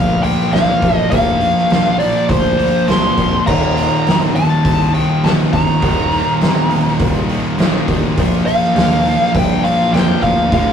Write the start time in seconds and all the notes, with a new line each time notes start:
Already playing: D2 A#2 F3 A#3 F5
0.21 A#2 F3 A#3 G5, open hi-hat
0.40 snare
0.51 C2 A#2 F3 A#3 F5, snare, open hi-hat
0.82 A1, kick, open hi-hat
0.96 D#5
1.09 F1 A#2 F3 A#3 F5, kick, open hi-hat
1.41 open hi-hat
1.58 snare
1.70 A#1, snare, open hi-hat
1.99 A#2 F3 A#3 D5, open hi-hat
2.29 D2 C5, kick, open hi-hat
2.57 A#2 F3 A#3, open hi-hat
2.86 C2 A#2 F3 A#3 C6, open hi-hat
2.90 snare
3.17 D1, kick, open hi-hat
3.46 D#1 D#2 A#2 D#3 A#5, kick, crash
3.77 open hi-hat
4.06 G1, snare, open hi-hat
4.34 D#2 A#2 D#3 A5, open hi-hat
4.65 C2, kick, open hi-hat
4.94 D#2 A#2 D#3 G5, open hi-hat
5.23 A#1 D#2 A#2 D#3 A5, snare, open hi-hat
5.53 G1 A#5, kick, open hi-hat
5.81 D#1 D#2 A#2 D#3, kick, open hi-hat
6.12 open hi-hat
6.41 G1, snare, open hi-hat
6.69 D#2 A#2 D#3, open hi-hat
6.87 snare
6.99 C2, kick, open hi-hat
7.28 D#2 A#2 D#3, open hi-hat
7.57 A#1 D#2 A#2 D#3, snare, open hi-hat
7.88 A1, kick, open hi-hat
8.17 A#1 A#2 F3 A#3, kick, open hi-hat
8.46 F5, open hi-hat
8.64 snare
8.75 D#2, snare, open hi-hat
9.04 F3 A#3, open hi-hat
9.08 A#2
9.22 snare
9.35 G2 G5, kick, open hi-hat
9.63 A#2 F3 A#3 F5, open hi-hat
9.81 snare
9.92 F2 A#2 F3 A#3 G5, snare, open hi-hat
10.23 D2 F5, kick, open hi-hat
10.50 D1 D2 A2 D3 F5, kick, open hi-hat